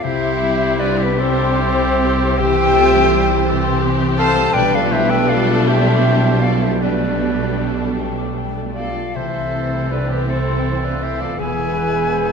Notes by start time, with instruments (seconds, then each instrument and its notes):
Already playing: harp C5
0.01 double bass section C2, cello section C3, harp C3, viola section G3 C4, violin section E4 G4, french horn section E4, clarinet G4, oboe C5, flute E5
0.22 harp C4
0.42 harp G3
0.79 french horn section D4, violin section F4, oboe B4, harp C5, flute D5
0.98 french horn section B3, violin section D4, oboe G4, harp G4
1.03 flute B4
1.17 french horn section C4, viola section D4, violin section E4 G4, oboe G4, clarinet A4, flute C5, harp G5
1.39 harp C6
1.59 viola section C4
1.80 harp C5
2.00 viola section C4
2.19 harp G3
2.38 harp C3, viola section E3 C4, french horn section G4, clarinet G4, violin section C5, oboe E5, flute G5
2.57 harp C4
2.75 harp G3, viola section A3, clarinet F4
2.93 harp E3
3.10 viola section G3, clarinet E4, harp C5
3.28 harp G4
3.46 viola section E3 C4, violin section G4, clarinet A4
3.64 harp C6
3.81 clarinet G4
4.00 harp C5
4.17 clarinet A4, french horn section A4, violin section C5, oboe F5, flute A5
4.36 harp G3
4.53 double bass section B1, cello section B2, harp B2, viola section G3 A3, violin section D4 B4, french horn section G4, clarinet B4, oboe D5, flute G5
4.72 harp G3, french horn section F4, violin section A4, oboe D5, flute F5
4.91 harp A3, french horn section E4, violin section G4, oboe C5, flute E5
5.09 harp G4, french horn section G4, violin section B4, oboe E5, flute G5
5.28 french horn section F4, violin section A4, oboe D5, harp D5, flute F5
5.48 harp A4
5.67 french horn section E4, clarinet G4, violin section G4, oboe C5, flute E5, harp G5
5.87 harp D6
6.05 harp G5
6.24 harp D5
6.41 french horn section F4, harp G4, violin section A4, oboe D5, flute F5
6.62 harp A3, french horn section E4, violin section G4, oboe C5, flute E5
6.80 harp B2, viola section G3 A3, violin section D4 G4, french horn section D4, clarinet G4, oboe B4, flute D5
7.02 harp G3
7.21 harp A3
7.41 harp G4
7.61 harp D5
7.80 harp A4
7.99 harp G5
8.18 harp D6
8.37 harp G5
8.57 harp D5
8.75 french horn section F4, harp G4, violin section A4, oboe D5, flute F5
8.96 harp A3
9.15 double bass section C2, cello section C3, harp C3, viola section E3 A3, violin section C4 A4, french horn section E4, clarinet A4, oboe C5, flute E5
9.35 harp C4
9.53 harp A3
9.73 harp E4
9.90 french horn section D4, violin section F4, oboe B4, harp C5, flute D5
10.09 french horn section B3, violin section D4, oboe G4, harp A4, flute B4
10.27 french horn section C4, violin section E4, clarinet A4, oboe A4, flute C5, harp E5
10.48 harp C6
10.66 harp E5
10.84 french horn section D4, violin section F4, oboe B4, harp C5, flute D5
11.02 harp E4, french horn section E4, violin section G4, oboe C5, flute E5
11.20 harp A3, french horn section F4, violin section A4, oboe D5, flute F5
11.38 double bass section E1, cello section E2, harp E3, viola section G#3, violin section B3 B4, clarinet G#4, french horn section G#4, oboe E5, flute G#5
11.58 harp B2
11.75 harp E4, clarinet B4
12.11 harp E4, clarinet C5